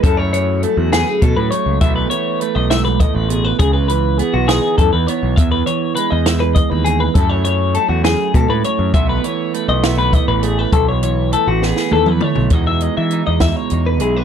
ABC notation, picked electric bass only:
X:1
M:6/8
L:1/16
Q:3/8=67
K:E
V:1 name="Picked electric bass" clef=bass
F,,4- F,, E,,2 z B,, A,, z C,, | B,,,2 z3 B,,,4 A,,,3 | C,,4- C,, B,,,2 z F,, E,, z B,,, | E,,2 z3 E,,4 D,,3 |
F,,4- F,, E,,2 z B,, A,, z F,, | B,,,2 z3 B,,,4 A,,,3 | B,,,4- B,,, A,,,2 z D,, E,, z B,,, | E,,3 E,2 E,,2 z E,,2 B,,,2 |]